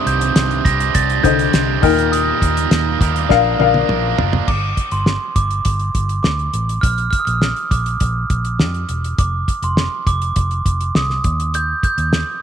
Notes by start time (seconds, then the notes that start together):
Already playing: G2 C3 D#3 G3 C4 D4 G4 C5 G5
0.06 C2 G6, closed hi-hat
0.21 closed hi-hat
0.36 C2, snare, closed hi-hat
0.51 closed hi-hat
0.65 C2 G3 C4 D4 G4 A#6, kick, closed hi-hat
0.80 closed hi-hat
0.95 C2 A6, kick, closed hi-hat
1.10 closed hi-hat
1.23 C2 D3 G3 C4 D4 G4 C5 D#5 G6, kick, closed hi-hat
1.39 closed hi-hat
1.53 C2 G3 C4 D4 G4, snare, closed hi-hat
1.82 D#2 A#2 G3 A#3 D#4 G4 A#4 G5 F6, kick, open hi-hat
1.99 closed hi-hat
2.12 D#3 G3 A#3 G4 A#4 D#6, closed hi-hat
2.42 D#2, kick, closed hi-hat
2.57 closed hi-hat
2.71 D#2, snare, closed hi-hat
3.00 D#2 G3 A#3 G4 A#4, kick, closed hi-hat
3.16 closed hi-hat
3.29 A#1 A#2 D3 F3 A#3 D4 A#4 F5, kick, snare
3.58 A#1 F3 A#3 D4 A#4 F5, high tom
3.74 high tom
3.88 A#1 F3 A#3 D4 A#4, mid tom
4.17 F#1 F3 A#3 D4 A#4, floor tom
4.33 floor tom
4.48 G1 D6, kick, crash
4.77 kick, closed hi-hat
4.91 G1 C6, closed hi-hat
5.06 snare
5.36 G1 D6, kick, closed hi-hat
5.51 closed hi-hat
5.65 G1, kick, closed hi-hat
5.79 closed hi-hat
5.95 G1, kick, closed hi-hat
6.09 closed hi-hat
6.23 D2 D6, snare
6.39 closed hi-hat
6.53 A1, closed hi-hat
6.69 closed hi-hat
6.81 A#1 F6, kick, closed hi-hat
6.98 closed hi-hat
7.11 F6, kick, closed hi-hat
7.19 D#6
7.25 A#1 F6, closed hi-hat
7.42 snare
7.56 closed hi-hat
7.71 A#1 D6, kick, closed hi-hat
7.86 closed hi-hat
8.00 A#1, kick, closed hi-hat
8.30 A#1, kick, closed hi-hat
8.45 closed hi-hat
8.59 F2, snare
8.74 closed hi-hat
8.89 E1, closed hi-hat
9.04 closed hi-hat
9.18 F1 D6, kick, closed hi-hat
9.48 kick, closed hi-hat
9.62 F1 C6, closed hi-hat
9.77 snare
10.07 F1 D6, kick, closed hi-hat
10.22 closed hi-hat
10.36 F1, kick, closed hi-hat
10.51 closed hi-hat
10.66 F1, kick, closed hi-hat
10.81 closed hi-hat
10.95 C2 D#6, snare
11.10 snare
11.24 D#2, kick, closed hi-hat
11.40 closed hi-hat
11.54 G6, closed hi-hat
11.83 G6, kick, closed hi-hat
11.98 D#2, closed hi-hat
12.13 snare